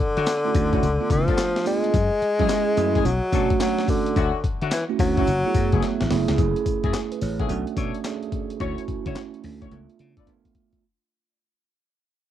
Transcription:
Already playing: tenor saxophone D3
0.17 slap bass D3, horn section C#4 E4 F#4, closed hi-hat
0.27 snare, clap, closed hi-hat, tambourine
0.45 tine electric piano A3 C#4 E4 F#4
0.55 slap bass D2, kick, closed hi-hat, tambourine
0.72 tine electric piano A3 C#4 E4 F#4, horn section C#4 E4 F#4, kick, closed hi-hat
0.83 slap bass C#2, closed hi-hat, tambourine
1.00 tine electric piano A3 B3 D4 F4
1.10 slap bass C#3, tenor saxophone F3, kick, closed hi-hat, tambourine
1.28 horn section B3 D4 F4 A4, kick, closed hi-hat
1.38 snare, clap, closed hi-hat, tambourine
1.56 snare
1.65 tenor saxophone G#3, tine electric piano A3 B3 D4 F4, open hi-hat, tambourine
1.84 closed hi-hat
1.94 slap bass F#2, kick, closed hi-hat, tambourine
2.22 muted slap bass stroke, closed hi-hat
2.39 slap bass F#3, tine electric piano G#3 C#4 E4 G#4, horn section A3 E4 G#4, kick, closed hi-hat
2.49 snare, clap, closed hi-hat, tambourine
2.77 slap bass F#2, tine electric piano A3 C#4 E4 G#4, closed hi-hat, tambourine
2.95 horn section A3 E4 G#4, kick, closed hi-hat
3.05 slap bass B1, tenor saxophone F#3, closed hi-hat, tambourine
3.32 slap bass B2, tine electric piano A3 C#4 D4 F#4, horn section C#4 D4 A4, kick, closed hi-hat, tambourine
3.50 kick, closed hi-hat
3.60 tenor saxophone F#3, tine electric piano A3 C#4 D4 F#4, snare, clap, closed hi-hat, tambourine
3.78 snare
3.88 tenor saxophone D3, kick, open hi-hat, tambourine
4.06 closed hi-hat
4.16 slap bass D2, horn section C#4 E4 F#4, kick, closed hi-hat, tambourine
4.44 muted slap bass stroke, kick, closed hi-hat
4.61 slap bass D3, horn section C#4 E4 F#4, closed hi-hat
4.71 tenor saxophone E3, snare, clap, closed hi-hat, tambourine
4.89 tine electric piano A3 C#4 E4 F#4
4.99 slap bass D2, tenor saxophone F#3, kick, open hi-hat, tambourine
5.17 tine electric piano A3 C#4 E4 F#4, horn section C#4 E4 F#4, kick, closed hi-hat
5.27 slap bass F#1, closed hi-hat, tambourine
5.45 tine electric piano A3 B3 E4 G#4
5.55 slap bass F#2, kick, closed hi-hat, tambourine
5.72 slap bass F#1, horn section A3 B3 E4 G#4, kick, closed hi-hat
5.82 tine electric piano E5, snare, closed hi-hat
6.01 slap bass A1, snare
6.10 slap bass F#1, tine electric piano A3 B3 E4 G#4, snare, open hi-hat
6.28 slap bass C#2, snare, closed hi-hat
6.38 slap bass F#1, tine electric piano A3 C#4 E4 G#4, kick, closed hi-hat, tambourine
6.56 closed hi-hat
6.66 muted slap bass stroke, kick, closed hi-hat, tambourine
6.83 slap bass F#2, horn section A3 E4 G#4, kick, closed hi-hat
6.94 snare, clap, closed hi-hat, tambourine
7.12 tine electric piano B4, closed hi-hat
7.21 slap bass A1, tine electric piano E4 C#5, open hi-hat, tambourine
7.39 horn section A3 E4 G#4, tine electric piano A4 F#5, kick, closed hi-hat
7.49 slap bass B1, tine electric piano A3 C#4 D4 F#4, closed hi-hat, tambourine
7.67 closed hi-hat
7.77 slap bass B2, horn section D4 A4 C#5, kick, closed hi-hat, tambourine
7.95 closed hi-hat
8.04 tine electric piano A3 C#4 D4 G#4, snare, clap, closed hi-hat, tambourine
8.23 closed hi-hat
8.32 kick, closed hi-hat
8.50 closed hi-hat
8.60 slap bass D2, tine electric piano A3 C#4 E4 F#4, horn section E4 F#4 C#5, kick, closed hi-hat
8.78 closed hi-hat
8.88 muted slap bass stroke, kick, closed hi-hat
9.06 slap bass D3, horn section E4 F#4 C#5, kick, closed hi-hat
9.16 tine electric piano A3 C#4 E4 F#4, snare, clap, closed hi-hat
9.34 closed hi-hat
9.44 slap bass D2, open hi-hat
9.61 horn section E4 F#4 C#5, kick, closed hi-hat
9.71 slap bass C#2, tine electric piano A3 B3 D4 F4, closed hi-hat
9.89 closed hi-hat
9.99 slap bass C#3, closed hi-hat
10.17 horn section F4 A4 B4 D5, kick, closed hi-hat
10.27 tine electric piano A3 B3 D4 F4, kick, closed hi-hat
10.45 kick, closed hi-hat
10.55 kick, closed hi-hat
10.73 kick, closed hi-hat

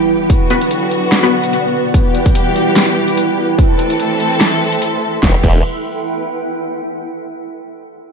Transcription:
Already playing: string section E3 G3 B3 G4, ambient pad E4 B4 G5, impact
0.30 string section D3 F#3 F#4, ambient pad B3, kick, closed hi-hat
0.34 ambient pad F#4
0.41 ambient pad D5
0.50 synth stab B3 F#4 B4, closed hi-hat
0.61 closed hi-hat
0.71 closed hi-hat
0.91 closed hi-hat
1.12 snare, closed hi-hat
1.23 synth stab B3 F#4 B4
1.44 closed hi-hat
1.53 closed hi-hat
1.94 string section E3 G3 G4, ambient pad E4, kick, closed hi-hat
2.15 closed hi-hat
2.26 kick, closed hi-hat
2.35 ambient pad G5, closed hi-hat
2.56 closed hi-hat
2.76 snare, closed hi-hat
3.08 closed hi-hat
3.17 closed hi-hat
3.58 string section E3 A3 C4 A4, ambient pad A4, kick, closed hi-hat
3.72 ambient pad E5
3.79 closed hi-hat
3.87 ambient pad C6, closed hi-hat
4.00 closed hi-hat
4.20 closed hi-hat
4.41 snare, closed hi-hat
4.72 closed hi-hat
4.82 closed hi-hat
5.23 wobble bass E1, string section E3 G3 B3 G4, ambient pad E4, kick, snare
5.30 ambient pad B4
5.36 ambient pad F#5
5.42 wobble bass E1, ambient pad G5, kick, crash

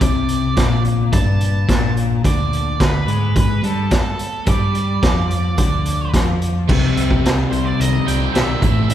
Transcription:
0.01 picked electric bass C2, overdriven electric guitar C3, lead electric guitar D5, kick, closed hi-hat
0.28 closed hi-hat
0.56 picked electric bass A#1, overdriven electric guitar A#2, kick, snare, closed hi-hat
0.85 closed hi-hat
1.12 picked electric bass G1, overdriven electric guitar G2, lead electric guitar A5, kick, closed hi-hat
1.40 closed hi-hat
1.68 picked electric bass A#1, overdriven electric guitar A#2, kick, snare, closed hi-hat
1.97 closed hi-hat
2.24 picked electric bass D2, overdriven electric guitar D3, lead electric guitar D5, kick, closed hi-hat
2.53 closed hi-hat
2.80 picked electric bass D2, overdriven electric guitar D3, lead electric guitar B4, kick, snare, closed hi-hat
3.07 picked electric bass G#2, overdriven electric guitar G#3, closed hi-hat
3.36 lead electric guitar B4, kick, closed hi-hat
3.63 picked electric bass G2, overdriven electric guitar G3, lead electric guitar A4, closed hi-hat
3.91 lead electric guitar A4, kick, snare, closed hi-hat
4.19 closed hi-hat
4.46 picked electric bass G2, overdriven electric guitar G3, lead electric guitar D5, kick, closed hi-hat
4.75 closed hi-hat
5.02 picked electric bass F2, overdriven electric guitar F3, kick, snare, closed hi-hat
5.30 closed hi-hat
5.58 picked electric bass D2, overdriven electric guitar D3, kick, closed hi-hat
5.85 closed hi-hat
6.14 picked electric bass F2, overdriven electric guitar F3, kick, snare, closed hi-hat
6.42 closed hi-hat
6.68 picked electric bass C2, overdriven electric guitar C3 G3 C4 D#4, kick, crash
6.97 picked electric bass C2, overdriven electric guitar G4, closed hi-hat
7.11 kick
7.24 picked electric bass C2, overdriven electric guitar G3, snare, closed hi-hat
7.51 picked electric bass C2, overdriven electric guitar C4, lead electric guitar C5, closed hi-hat
7.65 lead electric guitar D5
7.80 picked electric bass C2, overdriven electric guitar D#3, lead electric guitar D#5, closed hi-hat
8.06 picked electric bass C2, overdriven electric guitar C3 G3 C4 D#4, lead electric guitar G5, closed hi-hat
8.33 picked electric bass B1, overdriven electric guitar C3 D#3 G3 C4 D#4, lead electric guitar E5, snare, closed hi-hat
8.61 picked electric bass A1, overdriven electric guitar A2 E3 A3 C4 E4, kick, closed hi-hat
8.90 picked electric bass A1, overdriven electric guitar A2, lead electric guitar E5, closed hi-hat

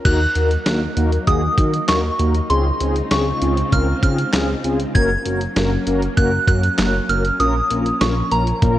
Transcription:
0.05 analog synth bass D#2, string machine F#3 A#3 D#4, analog polysynth A#3 D#4 F#4 A#4, synth bell F#6, kick, closed hi-hat, crash
0.35 analog synth bass D#2, analog polysynth A#3 D#4 F#4 A#4, closed hi-hat
0.51 closed hi-hat
0.66 analog synth bass D#2, analog polysynth A#3 D#4 F#4 A#4, snare, closed hi-hat
0.97 analog synth bass D#2, analog polysynth A#3 D#4 F#4 A#4, closed hi-hat
1.12 closed hi-hat
1.27 analog synth bass D#2, analog polysynth A#3 D#4 F#4 G#4, synth bell D#6, kick, closed hi-hat
1.58 analog synth bass D#3, analog polysynth A#3 D#4 F#4 A#4, kick, closed hi-hat
1.74 closed hi-hat
1.88 analog synth bass D#2, analog polysynth A#3 D#4 F#4 A#4, synth bell C#6, snare, clap, closed hi-hat
2.19 analog synth bass D#2, analog polysynth A#3 D#4 F#4 A#4, closed hi-hat
2.34 closed hi-hat
2.50 analog synth bass C#2, string machine C#3 G#3 C4 F4, analog polysynth C4 C#4 F4 G#4, synth bell C6, closed hi-hat
2.80 analog synth bass C#2, analog polysynth C4 C#4 F4 G#4, closed hi-hat
2.96 closed hi-hat
3.11 analog synth bass C#2, analog polysynth C4 C#4 F4 G#4, synth bell C#6, snare, closed hi-hat
3.42 analog synth bass C#2, analog polysynth C4 C#4 F4 G#4, closed hi-hat
3.57 closed hi-hat
3.72 analog synth bass C#2, analog polysynth C4 C#4 F4 A#4, synth bell F6, kick, closed hi-hat
4.03 analog synth bass C#3, analog polysynth C4 C#4 F4 G#4, synth bell F6, kick, closed hi-hat
4.19 closed hi-hat
4.33 analog synth bass C#2, analog polysynth C4 C#4 F4 G#4, snare, clap, closed hi-hat
4.64 analog synth bass C#2, analog polysynth C4 C#4 F4 G#4, closed hi-hat
4.80 closed hi-hat
4.95 analog synth bass F#1, string machine F#3 A#3 C#4, analog polysynth A#3 C#4 F#4 A#4, synth bell G#6, kick, closed hi-hat
5.25 analog synth bass F#1, analog polysynth A#3 C#4 F#4 A#4, closed hi-hat
5.41 closed hi-hat
5.56 analog synth bass F#1, analog polysynth A#3 C#4 F#4 A#4, snare, closed hi-hat
5.87 analog synth bass F#1, analog polysynth A#3 C#4 F#4 A#4, closed hi-hat
6.02 closed hi-hat
6.17 analog synth bass F#1, analog polysynth A#3 C#4 F#4 A#4, synth bell F#6, kick, closed hi-hat
6.48 analog synth bass F#2, analog polysynth A#3 C#4 F#4 A#4, synth bell F#6, kick, closed hi-hat
6.64 closed hi-hat
6.78 analog synth bass F#1, analog polysynth A#3 C#4 F#4 A#4, snare, clap, closed hi-hat
7.09 analog synth bass F#1, analog polysynth A#3 C#4 F#4 A#4, synth bell F6, closed hi-hat
7.25 closed hi-hat
7.40 analog synth bass A#1, string machine F3 A#3, analog polysynth A#3 C#4 F4 A#4, synth bell D#6, closed hi-hat
7.70 analog synth bass A#1, analog polysynth A#3 C#4 F4 A#4, closed hi-hat
7.86 closed hi-hat
8.01 analog synth bass A#1, analog polysynth A#3 C#4 F4 A#4, synth bell C#6, snare, closed hi-hat
8.31 analog synth bass A#1, analog polysynth A#3 C#4 F4 A#4, synth bell A#5, closed hi-hat
8.47 closed hi-hat
8.62 analog synth bass A#1, analog polysynth A#3 C#4 F4 A#4, kick, closed hi-hat

